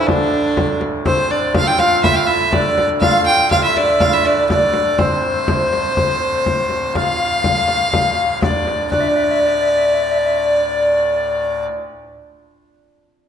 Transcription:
Already playing: D2 A2 E3
0.00 E4
0.07 D3 D4, frame drum
0.57 frame drum
0.81 frame drum
1.06 D2 A2 C4 C5, frame drum
1.30 D4 D5, frame drum
1.54 F4 F5, frame drum
1.64 G4 A4 G5
1.79 F4 F5, frame drum
2.03 E4 E5, frame drum
2.12 F5 G5
2.17 F4
2.27 E4 E5, frame drum
2.51 D4 D5, frame drum
2.78 frame drum
3.00 F4 F5, frame drum
3.21 A4
3.26 G4 G5, frame drum
3.51 F4 F5, frame drum
3.63 E4 E5
3.76 D4 D5, frame drum
4.00 F4 E5 F5, frame drum
4.06 F5
4.12 E4 E5
4.24 D4 D5
4.42 E4
4.49 D4 D5, frame drum
4.74 D5, frame drum
4.98 D2 A2 C4 C5, frame drum
5.24 frame drum
5.48 frame drum
5.73 frame drum
5.97 frame drum
6.22 frame drum
6.46 frame drum
6.70 frame drum
6.94 F4 F5, frame drum
7.20 frame drum
7.44 frame drum
7.68 frame drum
7.93 frame drum
8.42 D4 D5, frame drum
8.67 frame drum
8.91 D2 A2 D4 D5, frame drum
9.00 E5
9.09 D5
9.16 E5
9.24 D5
9.31 E5
9.40 D5
9.47 E5
9.54 D5
9.62 E5
9.70 D5
9.77 E5
9.86 D5
9.94 E5
10.03 D5
10.11 E5
10.19 D5
10.26 E5
10.34 E5
10.38 D5

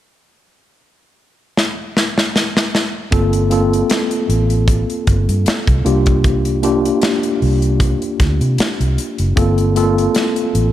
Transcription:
1.57 snare
1.97 snare
2.18 snare
2.36 snare
2.57 snare
2.75 snare
3.11 G1 A#3 C4 F4 A4, kick, closed hi-hat
3.33 closed hi-hat
3.50 A#3 C4 F4 A4, closed hi-hat
3.73 closed hi-hat
3.90 snare, closed hi-hat
4.11 closed hi-hat
4.29 A1, closed hi-hat
4.50 closed hi-hat
4.68 kick, closed hi-hat
4.90 closed hi-hat
5.07 G1, kick, closed hi-hat
5.28 G2, closed hi-hat
5.46 muted fingered electric bass stroke, snare, closed hi-hat
5.67 C2, kick, closed hi-hat
5.85 C2 A#3 D4 F4 G4, closed hi-hat
6.06 kick, closed hi-hat
6.24 kick, closed hi-hat
6.45 closed hi-hat
6.63 A#3 D4 F4 G4, closed hi-hat
6.85 closed hi-hat
7.02 snare, closed hi-hat
7.23 closed hi-hat
7.42 C2, open hi-hat
7.62 closed hi-hat
7.80 kick, closed hi-hat
8.02 closed hi-hat
8.20 D2, kick, snare, closed hi-hat
8.41 C3, closed hi-hat
8.58 muted fingered electric bass stroke, snare, closed hi-hat
8.80 C2, closed hi-hat
8.98 closed hi-hat
9.18 F#1, closed hi-hat
9.36 G1 A#3 C4 F4 A4, kick, closed hi-hat
9.58 closed hi-hat
9.75 A#3 C4 F4 A4, closed hi-hat
9.98 closed hi-hat
10.15 snare, closed hi-hat
10.36 closed hi-hat
10.55 A1, closed hi-hat

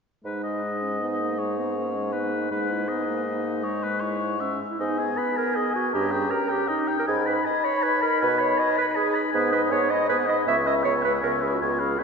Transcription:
0.24 G#2 G#3 D#4 B4
0.43 D#5
0.63 D#4
0.82 C#4
1.01 B3 D#4
1.20 A#3
1.38 G#3 D#4 C#5
1.58 B3
1.76 A#3 C#4
1.95 G#3
2.13 B3 D#4 B4
2.32 A#3
2.51 G#2 G#3 D#4 B4
2.70 E4
2.87 B3 D#4 D#5
3.06 A#3
3.25 D#4
3.63 G#3 C#5
3.83 B4
4.00 E4 C#5
4.39 G#3 C#4 E5
4.71 E4
4.79 G#2 B3 D#4 D#5 G#5
4.98 G#4 G#5
5.17 B4 B5
5.36 A#4 G#5
5.55 G#4 D#5
5.74 F#4 G#5
5.93 G2 C#4 G4 D#5 A#5
6.11 G#4 G5
6.30 A#4 A#5
6.49 G4 G5
6.67 D#4 D#5
6.87 G5
6.99 A#4
7.07 G#2 D#4 G#4 G#5 B5
7.26 B4 B5
7.45 D#5 G#5
7.64 C#5 B5
7.82 B4 G#5
8.02 A#4 B5
8.21 B2 B4 G#5
8.38 C#5 B5
8.58 D#5 G#5
8.77 B4 B5
8.95 G#4 G#5
9.14 B5
9.32 G#2 B3 B4 G#5 D#6
9.51 D#4 B4 D#5 B5
9.71 G#2 B3 C#5 G#5 D#6
9.89 D#4 D#5 B5
10.09 G#2 B3 B4 G#5 D#6
10.27 D#4 D#5 B5
10.47 C#2 B3 E5 G#5 C#6
10.65 C#4 D#5 E5 B5
10.83 C#2 B3 C#5 G#5 C#6
11.02 C#4 B4 E5 B5
11.21 C#2 B3 A#4 G#5
11.25 C#6
11.41 C#4 G#4 E5 B5
11.53 F#4
11.60 C#2 B3 F4 G#5 C#6
11.79 C#4 G#4 F5 B5
11.98 C#2 B3 B4 G#5 C#6

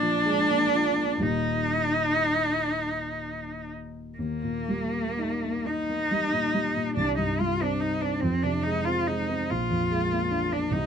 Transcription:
Already playing: A#2 D4
0.02 F3
0.26 G#3
0.50 A#3
0.73 F4
0.98 A#3
1.18 D#1 D#2 G3 A#3 D#4
1.22 D#4
4.18 D#2 A#3
4.43 A#2
4.68 G3
4.93 A#3
5.19 D#4
5.43 A#3
5.66 D#4
5.90 A#3
6.11 G3
6.32 A#2
6.54 G3
6.75 A#2
6.96 C2 D4
7.18 G2 D#4
7.40 G3 F4
7.61 C4 D4
7.80 D#4
8.01 C4 D4
8.20 F2 C4
8.43 C3 D4
8.63 G#3 D#4
8.85 C4 F4
9.07 G#3 D#4
9.29 C4
9.50 A#1 F4
9.70 F2
9.91 G#3
10.11 A#3
10.31 D4
10.51 A#3 D4
10.71 C2 D#4

